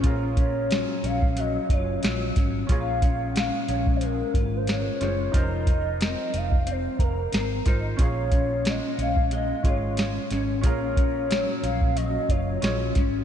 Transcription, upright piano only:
X:1
M:4/4
L:1/8
Q:"Swing 16ths" 1/4=91
K:Bbm
V:1 name="Upright piano"
[DFAB]8 | [DFAd]6- [DFAd] [DFAc] | [EFBc]6- [EFBc] [EFBc] | [DFAd]4- [DFAd] [DFAd]3 |
[DFAB]6 [DFAd]2 |]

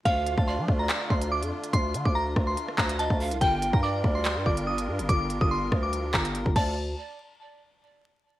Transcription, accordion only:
X:1
M:4/4
L:1/8
Q:1/4=143
K:Dm
V:1 name="Accordion"
F8- | F8- | F8- | F6- F [D,DFA] |
z8 |]
V:2 name="Accordion"
[D,A,D]8- | [D,A,D]8 | [G,DB]8- | [G,DB]6- [G,DB] z |
z8 |]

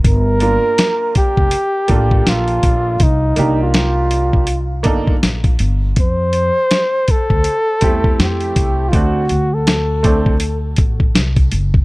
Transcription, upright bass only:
X:1
M:4/4
L:1/16
Q:"Swing 16ths" 1/4=81
K:Gm
V:1 name="Upright bass" clef=bass
G,,,3 z4 F,,, z2 A,,,2 B,,,2 B,,,2 | C,,2 C,,8 G,,,2 B,,,2 G,,,2 | F,,3 z4 D,, z2 =E,,2 F,,2 C,,2 | D,,2 D,,8 A,,,2 C,,2 ^F,,,2 |]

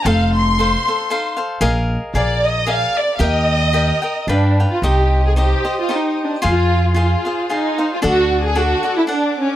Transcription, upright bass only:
X:1
M:3/4
L:1/8
Q:"Swing" 1/4=113
K:Eb
V:1 name="Upright bass" clef=bass
F,,,4 z2 | B,,,2 B,,,4 | E,,4 G,,2 | [K:Fdor] C,,4 z2 |
F,,4 z2 | D,,4 z2 |]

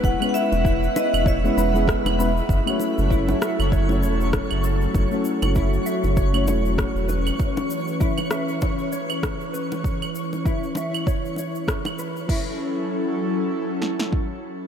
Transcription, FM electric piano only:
X:1
M:4/4
L:1/16
Q:"Swing 16ths" 1/4=98
K:F#m
V:1 name="FM electric piano"
[G,B,CEB] [G,B,CEB]8 [G,B,CEB]2 [G,B,CEG]3 [G,B,CEB] z | z [A,CEFc]8 [A,CEFc]6- [A,CEFc]- | [A,CEFc] [A,CEFc]8 [A,CEFc]4- [A,CEFc] z2 | z16 |
z16 | z16 |]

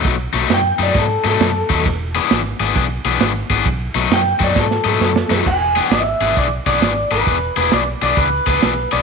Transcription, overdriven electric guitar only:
X:1
M:4/4
L:1/8
Q:"Swing" 1/4=133
K:Emix
V:1 name="Overdriven electric guitar"
[B,,F,A,^D] [B,,F,A,D] z [B,,F,A,D] z [B,,F,A,D] z [B,,F,A,D] | z [E,B,DG] z [E,B,DG] z [E,B,DG] z [E,B,DG] | z [B,,F,A,^D] z [B,,F,A,D] z [B,,F,A,D] z [B,,F,A,D] | z [E,B,DG] z [E,B,DG] z [E,B,DG] z [E,B,DG] |
z [E,B,DG] z [E,B,DG] z [E,B,DG] z [E,B,DG] |]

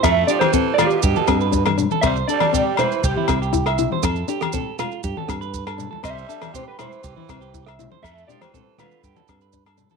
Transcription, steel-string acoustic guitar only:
X:1
M:4/4
L:1/8
Q:1/4=120
K:C
V:1 name="Steel-string acoustic guitar"
C D C z2 C D D | C D C z2 C E E | C D C z2 C z D | C D C z2 C E E |
C D C z2 C D D |]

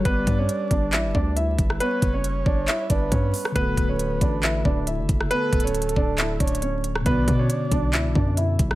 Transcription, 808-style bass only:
X:1
M:4/4
L:1/16
Q:1/4=137
K:Glyd
V:1 name="808-style bass" clef=bass
G,,,2 G,,2 z2 G,,,2 A,,, G,,, D,,4 G,,,2 | z2 F,,,4 G,,,2 z2 G,,,2 G,,2 z2 | D,,,2 D,,,4 A,,,4 D,,,3 F,,, F,,,2 | z2 D,,,4 D,,,4 D,,,6 |
B,,,2 B,,2 z2 B,,,2 C,, B,,, F,,4 B,,,2 |]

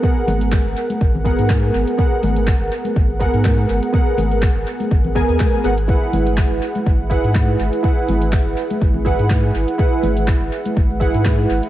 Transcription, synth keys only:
X:1
M:4/4
L:1/8
Q:"Swing 16ths" 1/4=123
K:G#m
V:1 name="Synth keys"
[B,GAf]4- [B,GAf] [B,GAf]3 | [B,GAf]4- [B,GAf] [B,GAf]3 | [B,GAf]4- [B,GAf] [B,GAg]2 [B,GAf] | [EGBf]4- [EGBf] [EGBf]3 |
[EGBf]4- [EGBf] [EGBf]3 | [EGBf]4- [EGBf] [EGBf]3 |]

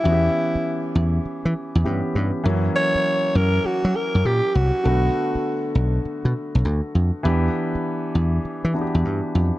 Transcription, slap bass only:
X:1
M:4/4
L:1/16
Q:"Swing 16ths" 1/4=100
K:Bm
V:1 name="Slap bass" clef=bass
E,,2 z4 E,,2 z E, z E,, G,, z G,, z | F,,2 z4 F,,2 z F, z F,, ^A,, z =C,, z | B,,,2 z4 B,,,2 z B,, z B,,, D,, z ^E,, z | E,,2 z4 E,,2 z E, z E,, G,, z ^E,, z |]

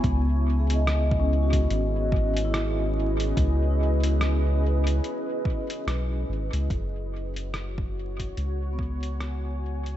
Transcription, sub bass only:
X:1
M:4/4
L:1/16
Q:"Swing 16ths" 1/4=72
K:C#m
V:1 name="Sub bass" clef=bass
C,,8 G,,,8 | C,,8 z4 B,,,2 G,,, C,, | F,,,8 C,,8 |]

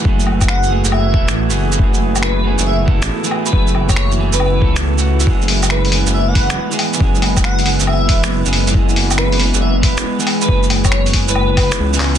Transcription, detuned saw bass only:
X:1
M:4/4
L:1/16
Q:"Swing 16ths" 1/4=138
K:Emix
V:1 name="Detuned saw bass" clef=bass
F,,,6- F,,, F,,,3 E,,, A,,,2 F,,,3 | F,,,6- F,,, F,,,4 A,,, z4 | F,,,6- F,,, F,,,3 C,,6 | F,,,6- F,,, F,,,4 F,,, z4 |
F,,,6- F,,, F,,,3 E,,, F,,,2 F,,,3 | F,,,6- F,,, F,,,4 F,,, z4 | F,,,6- F,,, F,,,4 z C,,4 |]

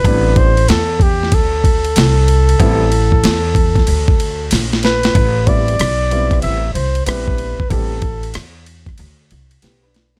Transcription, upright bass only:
X:1
M:4/4
L:1/16
Q:"Swing 16ths" 1/4=94
K:Am
V:1 name="Upright bass" clef=bass
A,,,4 E,,4 D,,4 C,,4 | A,,,4 E,,4 D,,4 _B,,,4 | A,,,4 B,,,4 A,,,2 C,,2 _B,,,3 z | A,,,4 E,,4 D,,2 C,,2 B,,,4 |]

